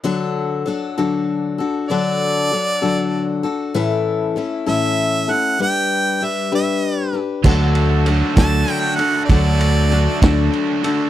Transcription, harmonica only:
X:1
M:6/8
L:1/16
Q:3/8=65
K:D
V:1 name="Harmonica"
z12 | d8- d2 z2 | z6 e4 f2 | g4 e2 e4 z2 |
z6 a3 g f2 | d8 z4 |]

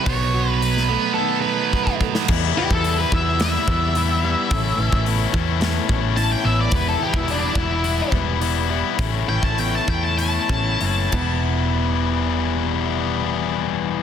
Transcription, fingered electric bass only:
X:1
M:4/4
L:1/16
Q:1/4=108
K:Bphr
V:1 name="Fingered electric bass" clef=bass
B,,,8 z8 | [K:Edor] E,,2 z E,,3 E,,4 E,,6 | A,,,2 A,,, A,,,3 E,,4 A,,,4 A,,,2 | E,,,2 z E,,,3 E,,,4 E,,,6 |
A,,,2 A,,, A,,,3 E,,4 A,,,2 F,,,2 E,,,2- | E,,,16 |]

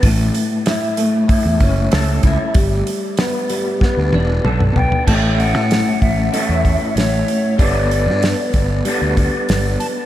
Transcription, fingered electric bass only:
X:1
M:4/4
L:1/16
Q:1/4=95
K:Amix
V:1 name="Fingered electric bass" clef=bass
A,,,2 z6 z E,, F,,,2 C,,2 C,, z | G,,,2 z6 z D,, E,,,2 B,,,2 B,,, z | A,,,3 A,,2 z A,,,2 z E,,2 z A,,,2 z2 | G,,,3 G,,2 z G,,,2 z D,,2 z G,,,2 z2 |]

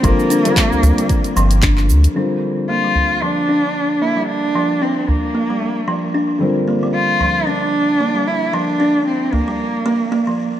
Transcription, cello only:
X:1
M:4/4
L:1/8
Q:"Swing 16ths" 1/4=113
K:Gm
V:1 name="Cello"
B,6 z2 | z2 F2 D3 =E | D2 C B,4 z | z2 F2 D3 =E |
D2 C B,4 z |]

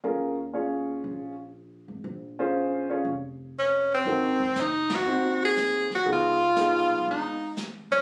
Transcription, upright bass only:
X:1
M:4/4
L:1/8
Q:"Swing" 1/4=120
K:Abmix
V:1 name="Upright bass" clef=bass
E,,4 B,,,3 A,,, | B,,,4 F,,,4 | A,,,2 G,,,2 E,,3 E,, | D,,3 _C,, A,,,3 =A,,, |]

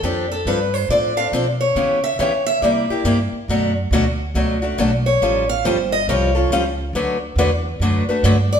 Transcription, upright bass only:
X:1
M:4/4
L:1/8
Q:"Swing" 1/4=139
K:D
V:1 name="Upright bass" clef=bass
=F,,2 G,,2 A,,2 B,,2 | C,2 D,2 =C, z G,, z | F,,2 D,,2 C,,2 B,,,2 | A,,,2 G,,,2 ^B,,,2 C,,2 |
D,,2 E,,2 F,, z G,,2 |]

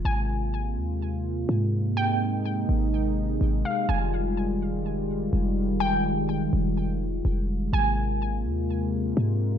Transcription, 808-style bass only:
X:1
M:4/4
L:1/8
Q:1/4=125
K:Ab
V:1 name="808-style bass" clef=bass
A,,,3 E,,3 A,,2- | A,,3 A,,,3 A,,, z | F,,,6 F,,,2- | F,,,3 F,,,3 F,,,2 |
A,,,3 E,,3 A,,2 |]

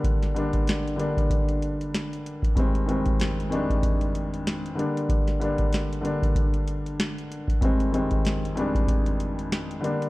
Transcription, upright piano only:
X:1
M:4/4
L:1/8
Q:"Swing 16ths" 1/4=95
K:Fdor
V:1 name="Upright piano" clef=bass
[D,G,B,D] [D,G,B,D] z [D,G,B,D]3 z2 | [F,,E,G,A,C] [F,,E,G,A,C] z [F,,E,G,A,D]3 z [D,G,B,D]- | [D,G,B,D] [D,G,B,D] z [D,G,B,D]3 z2 | [F,,E,G,A,C] [F,,E,G,A,C] z [F,,E,G,A,D]3 z [D,G,B,D] |]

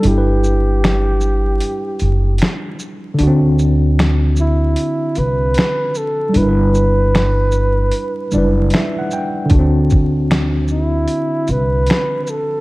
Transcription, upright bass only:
X:1
M:4/4
L:1/8
Q:"Swing 16ths" 1/4=76
K:G
V:1 name="Upright bass" clef=bass
G,,,4 z F,,, z2 | D,,4 z C,, z2 | G,,,4 z F,,, z2 | D,,4 z C,, z2 |]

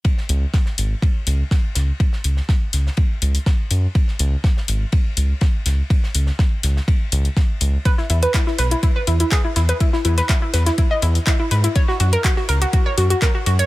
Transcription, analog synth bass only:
X:1
M:4/4
L:1/8
Q:1/4=123
K:C#dor
V:1 name="Analog synth bass" clef=bass
z C,, z G,,, z C,, z C,, | z C,, z C,, z C,, z F,, | z C,, z G,,, z C,, z C,, | z C,, z C,, z C,, z C,, |
z E,, z B,,, z E,, z E,, | z E,, z E,, z E,, z G,, | z F,, z C,, z F,, z F,, |]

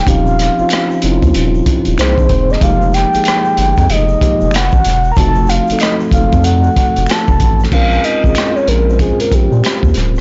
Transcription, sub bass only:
X:1
M:4/4
L:1/16
Q:"Swing 16ths" 1/4=94
K:Bbdor
V:1 name="Sub bass" clef=bass
E,,,3 F,,, z2 F,,, E,, E,,,2 z E,,, C,, B,,, =E,,,2 | F,,,3 G,,, z2 G,,, F,, F,,,2 z F,,, F,,, =A,,, =E,,,2 | F,,,3 _G,,, z2 G,,, F,,3 F,,, F,,, z F,,, =A,,,2 | B,,,2 z A,,, z2 B,,,3 z B,,, B,, z E,, =D,,,2 |]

